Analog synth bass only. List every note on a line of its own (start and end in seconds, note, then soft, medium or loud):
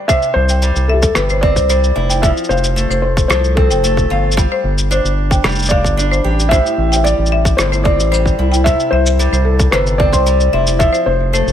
0.36 0.71 C2 loud
0.76 1.12 C2 medium
1.16 1.58 G1 medium
1.56 1.92 C2 medium
1.96 2.32 F1 medium
2.50 2.86 F1 loud
2.90 3.26 F1 medium
3.30 3.72 C2 medium
3.70 4.06 F1 medium
4.10 4.46 G1 medium
4.64 5.00 G1 loud
5.04 5.40 G1 medium
5.44 5.86 F1 medium
5.84 6.20 G1 loud
6.24 6.61 A1 medium
6.78 7.14 A1 loud
7.18 7.54 A1 medium
7.59 8.00 G1 medium
7.99 8.35 A1 medium
8.39 8.75 C2 medium
8.92 9.28 C2 loud
9.32 9.68 C2 medium
9.72 10.14 G1 medium
10.13 10.49 C2 loud
10.53 10.89 F1 medium
11.06 11.43 F1 loud
11.47 11.52 F1 loud